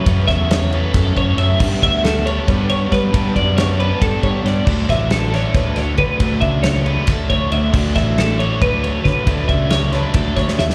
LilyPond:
<<
  \new Staff \with { instrumentName = "Clean electric guitar" } { \time 7/8 \key d \major \tempo 4 = 137 b'8 e''8 cis''8 b'8 a'8 cis''8 e''8 | r8 e''8 a'8 cis''8 b'8 cis''8 b'8~ | b'8 d''8 cis''8 b'8 a'8 cis''8 d''8 | r8 e''8 a'8 cis''8 b'8 cis''8 b'8~ |
b'8 e''8 cis''8 b'8 a'8 cis''8 e''8 | r8 e''8 a'8 cis''8 b'8 cis''8 b'8~ | b'8 e''8 cis''8 b'8 a'8 cis''8 e''8 | }
  \new Staff \with { instrumentName = "Overdriven electric guitar" } { \clef bass \time 7/8 \key d \major <fis, cis fis a cis'>4. <fis, cis fis a cis'>2 | <g, d g b d'>4. <g, d g b d'>2 | <g, d g b d'>4. <g, d g b d'>2 | <d fis a d'>4. <d fis a d'>2 |
<d fis a d'>4. <d fis a d'>2 | <d fis a d'>4. <d fis a d'>2 | <d fis a d'>4. <d fis a d'>2 | }
  \new Staff \with { instrumentName = "Fingered electric bass" } { \clef bass \time 7/8 \key d \major fis,8 e,4. fis,8 fis,8 fis,8 | g,8 d,4. g,4 g8 | g,8 fis,4. g,8 g,8 g,8 | d,8 a,,4. d,4 d8 |
d,8 cis,4. d,8 d,8 d,8 | d,8 a,,4. d,4 d8 | d,8 cis,4. d,8 d,8 ees,8 | }
  \new DrumStaff \with { instrumentName = "Drums" } \drummode { \time 7/8 <bd cymr>8 <bd cymr sn>8 <cymr sn>8 cymr8 <bd cymr sn>8 <bd cymr>8 cymr8 | <cymc bd>8 <bd cymr>8 <cymr sn>8 cymr8 <bd cymr>8 cymr8 <bd cymr sn>8 | <bd cymr>8 <bd cymr>8 <cymr sn>8 cymr8 <bd cymr>8 <bd cymr>8 <cymr sn>8 | <cymc bd>8 <bd cymr sn>8 <cymr sn>8 <cymr sn>8 <bd cymr sn>8 <cymr sn>8 <bd cymr>8 |
<bd cymr>8 <bd cymr>8 <cymr sn>8 cymr8 <bd cymr sn>8 <bd cymr>8 cymr8 | <cymc bd>8 <bd cymr sn>8 <cymr sn>8 cymr8 <bd cymr>8 cymr8 <bd cymr sn>8 | <bd cymr>8 <bd cymr>8 <cymr sn>8 <cymr sn>8 <bd cymr>8 <bd cymr sn>16 sn16 sn16 sn16 | }
>>